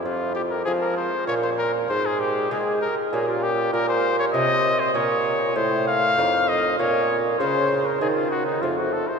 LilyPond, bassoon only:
\new Staff \with { instrumentName = "Bassoon" } { \clef bass \time 3/4 \key f \minor \tempo 4 = 98 f,4 f4 bes,4 | aes,4 aes8 r8 bes,4 | \key bes \minor bes,4 c4 bes,4 | a,4 f,4 bes,4 |
des4 ees4 f,4 | }